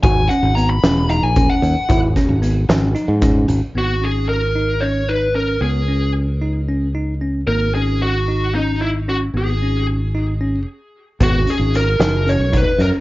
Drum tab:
HH |xxxxxxx|xxxxxxx|-------|-------|
SD |---o---|-o-o-o-|-------|-------|
BD |o----o-|oo---o-|-------|-------|

HH |-------|-------|xxxxxxx|
SD |-------|-------|---o--o|
BD |-------|-------|o----o-|